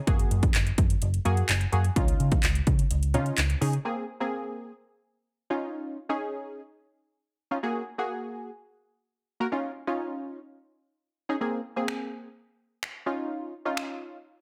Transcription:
0.07 F#1 A#3 F#4 G#4, kick, closed hi-hat
0.19 closed hi-hat
0.31 F#2, closed hi-hat
0.43 kick, closed hi-hat
0.55 F#1, clap, closed hi-hat
0.67 closed hi-hat
0.78 F#2, kick, closed hi-hat
0.90 closed hi-hat
1.02 F#1, closed hi-hat
1.14 closed hi-hat
1.25 F#2 A#3 F#4 G#4, closed hi-hat
1.37 closed hi-hat
1.49 F#1, clap, closed hi-hat
1.61 closed hi-hat
1.72 F#2 A#3 F#4 G#4, closed hi-hat
1.84 closed hi-hat
1.96 C#2 C#4 D#4 F4, kick, closed hi-hat
2.08 closed hi-hat
2.20 C#3, closed hi-hat
2.32 kick, closed hi-hat
2.43 C#2, clap, closed hi-hat
2.55 closed hi-hat
2.67 C#3, kick, closed hi-hat
2.79 closed hi-hat
2.91 C#2, closed hi-hat
3.03 closed hi-hat
3.14 C#3 C#4 D#4 F4, closed hi-hat
3.26 closed hi-hat
3.38 C#2, clap, closed hi-hat
3.50 closed hi-hat
3.61 C#3 C#4 D#4 G#4, open hi-hat
3.73 closed hi-hat
3.85 A#3 C4 G#4
4.20 A#3 C4 G#4
5.50 C#4 D#4 F4
6.09 C#4 D#4 G#4
7.51 C#4 D#4 F4
7.63 A#3 F#4 G#4
7.98 A#3 F#4 G#4
9.40 A#3 F#4 A#4
9.52 C#4 D#4 F4
9.87 C#4 D#4 F4
11.29 C#4 D#4 G#4
11.41 A#3 C4 G#4
11.76 A#3 C4 G#4
11.88 finger snap
12.83 finger snap
13.06 C#4 D#4 F4
13.65 C#4 D#4 F4
13.77 finger snap

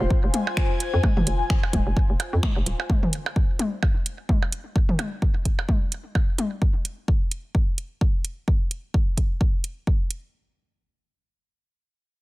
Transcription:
Already playing: F4 C5 G5
0.00 F1 G#5
0.10 kick
0.24 F1
0.34 closed hi-hat, high tom
0.47 percussion blips
0.57 finger snap, kick
0.80 closed hi-hat
0.94 F2
1.03 kick, high tom, percussion blips
1.17 F1, mid tom
1.27 F1, closed hi-hat
1.50 finger snap, kick
1.63 percussion blips
1.73 D#1, kick, closed hi-hat, high tom
1.87 F1
1.97 kick
2.10 F1
2.20 closed hi-hat, percussion blips
2.33 F2
2.43 finger snap, kick, high tom
2.56 F1
2.66 D#1, closed hi-hat
2.80 percussion blips
2.90 kick, high tom
3.03 mid tom
3.13 closed hi-hat
3.26 percussion blips
3.36 kick
3.59 closed hi-hat, high tom
3.83 kick, percussion blips
4.06 closed hi-hat
4.29 kick, high tom
4.42 percussion blips
4.52 closed hi-hat
4.76 kick
4.89 mid tom
4.99 closed hi-hat, high tom, percussion blips
5.22 kick
5.45 kick, closed hi-hat
5.59 percussion blips
5.69 kick, high tom
5.92 closed hi-hat
6.15 kick, percussion blips
6.38 closed hi-hat, high tom
6.62 kick
6.85 closed hi-hat
7.08 kick
7.31 closed hi-hat
7.55 kick
7.78 closed hi-hat
8.01 kick
8.25 closed hi-hat
8.48 kick
8.71 closed hi-hat
8.94 kick
9.17 kick, closed hi-hat
9.41 kick
9.64 closed hi-hat
9.87 kick
10.11 closed hi-hat

